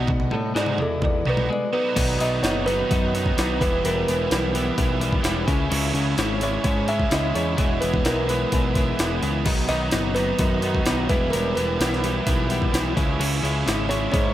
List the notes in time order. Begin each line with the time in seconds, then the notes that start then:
Already playing: B1 B2 B3 D#4 F#4
0.08 muted overdriven electric guitar stroke, kick, floor tom
0.20 floor tom
0.31 A2 A3, muted overdriven electric guitar stroke, floor tom, mid tom
0.55 G#2 F#3 G#3 B3 D#4 F#4 D5, snare
0.66 floor tom
0.78 E2 E3 A4, muted overdriven electric guitar stroke, floor tom
1.02 D5, muted overdriven electric guitar stroke, kick, floor tom
1.25 B1 B2 F#3 B3 D#4 F#4 B4, floor tom
1.37 floor tom, mid tom
1.50 G#3 D5, muted overdriven electric guitar stroke
1.73 F#3 B3 D#4 F#4 B4
1.96 B1 B2 D#3 F#3 B3 D#4 B4 F#5, kick, open hi-hat, crash
2.19 B1 B2 D#3 F#3 B3 D#4 D#5 D#6, open hi-hat
2.43 F#1 B2 D#3 F#3 B3 C#5 C#6, snare, open hi-hat
2.47 D#4
2.66 B2 D#3 F#3 B3 D#4 B4 B5, open hi-hat
2.90 F#2 B2 D#3 F#3 B3 D#4, kick, open hi-hat
3.15 B2 D#3 F#3 B3 D#4, open hi-hat
3.26 kick
3.37 B1 B2 D#3 F#3 B3 D#4, snare, open hi-hat
3.59 E1 E3 G3 B3 E4 B4 G5 B5, kick, open hi-hat
3.84 E1 E3 G3 B3 E4 A#4 A#5, open hi-hat
4.07 E1 E3 G3 B3 E4 B4 B5, open hi-hat
4.31 B1 E3 G3 B3 E4, snare, open hi-hat
4.54 E3 G3 B3 E4, open hi-hat
4.77 B1 E3 G3 B3 E4, kick, open hi-hat
5.01 E3 G3 B3 E4, open hi-hat
5.13 kick
5.24 E1 E3 G3 B3 E4, snare, open hi-hat
5.48 C#2 C#3 G#3 C#4 E4 C#5 G#5, kick, open hi-hat
5.71 C#2 C#3 G#3 C#4 E4, crash
5.94 C#2 C#3 G#3 C#4 E4, open hi-hat
6.18 G#1 C#3 G#3 C#4 E4, snare, open hi-hat
6.41 C#3 G#3 C#4 E4 C#5 C#6, open hi-hat
6.64 G#2 C#3 G#3 C#4 C#5 C#6, kick, open hi-hat
6.68 E4
6.88 C#3 G#3 C#4 E4 E5 E6, open hi-hat
7.00 kick
7.11 C#2 C#3 G#3 C#4 E4 D#5 D#6, snare, open hi-hat
7.35 E2 C#3 G#3 C#4 E4 C#5 C#6, open hi-hat
7.58 E1 E3 G#3 B3 E4 B4, kick, open hi-hat
7.81 E1 E3 G#3 B3 E4 B4 B5, open hi-hat
7.94 kick
8.05 B1 E3 G#3 B3 E4 A#4 A#5, snare, open hi-hat
8.28 E3 G#3 B3 E4 B4 B5, open hi-hat
8.52 B1 E3 G#3 B3 E4, kick, open hi-hat
8.74 E3 G#3 B3 E4, kick, open hi-hat
8.98 E1 E3 G#3 B3 E4, snare, open hi-hat
9.22 C#2 E3 G#3 B3 E4, open hi-hat
9.45 B1 B2 D#3 F#3 B3 D#4, kick, crash
9.49 F#5
9.68 B1 B2 D#3 F#3 B3 D#4 D#5 D#6, open hi-hat
9.91 F#1 B2 D#3 F#3 B3 D#4, snare, open hi-hat
10.14 B2 D#3 F#3 B3 D#4 B4 B5, open hi-hat
10.37 F#2 B2 D#3 F#3 B3 D#4, kick, open hi-hat
10.61 B2 D#3 F#3 B3 D#4, open hi-hat
10.75 kick
10.85 B1 B2 D#3 F#3 B3 D#4, snare, open hi-hat
11.08 E1 E3 G3 B3 E4 B4 G5 B5, kick, open hi-hat
11.30 E1 E3 G3 B3 E4 A#4 A#5, open hi-hat
11.55 E1 E3 G3 B3 E4 B4 B5, open hi-hat
11.79 B1 E3 G3 B3 E4, snare, open hi-hat
11.93 snare
12.02 E3 G3 B3 E4, open hi-hat
12.25 B1 E3 G3 B3 E4, kick, open hi-hat
12.49 E3 G3 B3 E4, open hi-hat
12.62 kick
12.72 B1 E3 G3 B3 E4, snare, open hi-hat
12.95 C#2 C#3 G#3 C#4 E4 C#5 G#5, kick, open hi-hat
13.19 C#2 C#3 G#3 C#4 E4, crash
13.42 C#2 C#3 G#3 C#4 E4, open hi-hat
13.66 G#1 C#3 G#3 C#4 E4, snare, open hi-hat
13.89 C#3 G#3 C#4 E4 C#5 C#6, open hi-hat
14.12 G#2 C#3 G#3 C#4 E4 C#5 C#6, kick, open hi-hat